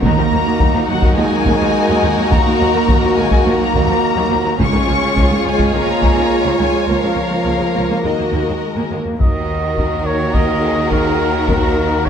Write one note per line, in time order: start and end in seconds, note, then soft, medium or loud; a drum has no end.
0.01 0.09 D#2 medium
0.01 0.84 D#3 medium
0.01 0.09 F#3 medium
0.01 0.83 A#3 medium
0.01 4.55 A#3 medium
0.01 4.55 D#4 medium
0.01 4.55 F#4 medium
0.01 4.56 F#4 medium
0.01 4.55 A#4 medium
0.01 0.84 A#5 medium
0.01 taiko medium
0.17 0.23 D#2 soft
0.17 0.23 F3 soft
0.32 0.37 D#2 medium
0.32 0.38 D#2 soft
0.32 0.37 F#3 soft
0.46 0.52 D#2 medium
0.46 0.52 D#3 soft
0.59 0.65 D#2 medium
0.59 0.66 D#2 medium
0.59 0.66 F#3 medium
0.59 taiko medium
0.74 0.80 D#2 medium
0.74 0.80 F3 soft
0.88 0.94 D#2 medium
0.88 0.95 D#2 soft
0.88 1.16 F#3 medium
0.88 0.94 F#3 soft
0.88 1.17 F#5 medium
1.02 1.09 D#2 medium
1.02 1.08 F#3 medium
1.02 taiko medium
1.15 1.22 D#2 soft
1.15 1.23 D#2 soft
1.15 1.21 F3 medium
1.15 2.31 G#3 medium
1.15 2.28 G#5 medium
1.31 1.37 D#2 medium
1.31 1.37 F#3 medium
1.45 1.51 D#2 medium
1.45 1.52 D#2 medium
1.45 1.51 F#3 medium
1.45 taiko medium
1.59 1.67 D#2 soft
1.59 1.65 F3 medium
1.89 1.95 D#2 medium
1.89 1.94 F#3 medium
2.02 2.08 D#2 soft
2.02 2.09 D#2 medium
2.02 2.08 F3 medium
2.17 2.23 D#2 soft
2.17 2.23 F#3 medium
2.30 2.37 D#2 medium
2.30 2.38 D#2 medium
2.30 2.36 F#3 medium
2.30 3.14 A#3 medium
2.30 3.16 A#5 medium
2.30 taiko medium
2.46 2.52 D#2 soft
2.46 2.52 F3 soft
2.60 2.65 D#2 medium
2.60 2.66 D#2 soft
2.60 2.66 F#3 soft
2.74 2.80 D#2 medium
2.74 2.81 D#3 soft
2.88 2.94 D#2 medium
2.88 2.95 F#3 medium
2.88 taiko medium
3.03 3.08 D#2 medium
3.03 3.09 F3 soft
3.15 3.22 D#2 medium
3.15 3.23 D#2 soft
3.15 3.23 F#3 medium
3.15 3.44 G#3 medium
3.15 3.45 G#5 medium
3.30 3.36 D#2 medium
3.30 3.36 F#3 medium
3.30 taiko medium
3.44 3.51 D#2 soft
3.44 3.52 D#2 soft
3.44 3.51 F3 medium
3.44 4.56 A#3 medium
3.48 4.61 A#5 loud
3.60 3.65 D#2 medium
3.60 3.65 F#3 medium
3.74 3.80 D#2 medium
3.74 3.81 D#2 medium
3.74 3.80 F#3 medium
3.74 taiko medium
3.87 3.93 D#2 soft
3.87 3.95 F3 medium
4.16 4.22 D#2 medium
4.16 4.22 F#3 medium
4.30 4.36 D#2 medium
4.30 4.38 D#2 medium
4.30 4.36 F3 medium
4.44 4.50 D#2 soft
4.44 4.50 F#3 medium
4.58 4.64 C#2 medium
4.58 4.65 C#2 medium
4.58 4.64 F3 medium
4.58 6.84 G#3 medium
4.58 5.43 C#4 medium
4.58 7.99 F4 medium
4.58 7.88 F4 medium
4.58 6.84 G#4 medium
4.58 8.04 C#5 medium
4.58 5.44 C#6 medium
4.58 taiko medium
4.72 4.79 C#2 medium
4.72 4.78 D#3 medium
4.86 4.94 C#2 soft
4.86 4.95 C#2 medium
4.86 4.92 F3 soft
5.00 5.08 C#2 medium
5.00 5.06 C#3 soft
5.15 5.22 C#2 medium
5.15 5.23 C#2 medium
5.15 5.21 F3 medium
5.15 taiko medium
5.28 5.37 C#2 soft
5.28 5.34 D#3 soft
5.44 5.51 C#2 soft
5.44 5.50 F3 medium
5.44 5.73 G#3 medium
5.50 5.76 G#5 medium
5.58 5.66 C#2 medium
5.58 5.64 F3 medium
5.58 taiko medium
5.73 5.80 C#2 soft
5.73 5.79 D#3 soft
5.73 6.44 A#3 medium
5.73 6.59 A#5 medium
5.88 5.94 C#2 soft
5.88 5.93 F3 soft
6.02 6.07 C#2 medium
6.02 6.08 C#2 medium
6.02 6.08 F3 medium
6.02 taiko medium
6.16 6.23 C#2 soft
6.16 6.22 D#3 soft
6.45 6.50 C#2 medium
6.45 6.51 F3 medium
6.59 6.65 C#2 soft
6.59 6.65 D#3 medium
6.59 6.88 G#3 medium
6.63 6.89 G#5 medium
6.73 6.80 C#2 soft
6.73 6.79 F3 soft
6.88 6.94 C#2 medium
6.88 6.95 C#2 medium
6.88 8.04 F3 medium
6.88 6.93 A#3 soft
6.88 8.52 A#3 medium
6.88 8.03 A#4 medium
6.88 8.03 F5 medium
7.03 7.09 C#2 soft
7.03 7.08 G#3 soft
7.16 7.22 C#2 soft
7.16 7.23 C#2 soft
7.16 7.22 A#3 soft
7.30 7.37 C#2 soft
7.30 7.36 F3 soft
7.44 7.51 C#2 medium
7.44 7.52 C#2 medium
7.44 7.50 A#3 medium
7.58 7.66 C#2 soft
7.58 7.64 G#3 soft
7.72 7.81 C#2 soft
7.72 7.82 C#2 soft
7.72 7.78 A#3 soft
7.88 7.95 C#2 medium
7.88 7.94 A#3 medium
8.03 8.11 D#2 soft
8.03 8.92 D#3 medium
8.03 8.09 G#3 soft
8.03 9.00 F#4 soft
8.03 8.54 F#4 soft
8.03 8.98 A#4 soft
8.03 8.90 D#5 medium
8.18 8.25 D#2 soft
8.18 8.24 A#3 soft
8.32 8.39 D#2 medium
8.32 8.38 A#3 soft
8.47 8.54 D#2 soft
8.47 8.53 G#3 soft
8.62 8.89 G#3 soft
8.76 8.82 D#2 medium
8.76 8.82 A#3 medium
8.91 8.97 D#2 soft
8.91 8.97 G#3 soft
8.91 9.18 A#3 soft
9.06 9.11 D#2 soft
9.06 9.12 A#3 soft
9.19 12.09 D#2 medium
9.19 12.09 D#3 soft
9.19 12.09 A#3 medium
9.19 12.09 F#4 medium
9.19 12.09 F#4 soft
9.19 12.09 A#4 soft
9.19 10.08 D#5 medium
9.19 taiko medium
9.77 taiko medium
10.06 10.36 C#5 medium
10.34 10.61 A#4 soft
10.34 10.91 D#5 medium
10.34 taiko medium
10.63 11.48 G#4 soft
10.91 11.47 A#4 medium
10.91 taiko medium
11.48 11.75 F#4 soft
11.48 12.07 A#4 medium
11.48 taiko medium
11.76 12.04 F#4 soft
12.05 12.09 G#4 soft
12.05 12.09 C#5 medium
12.05 taiko medium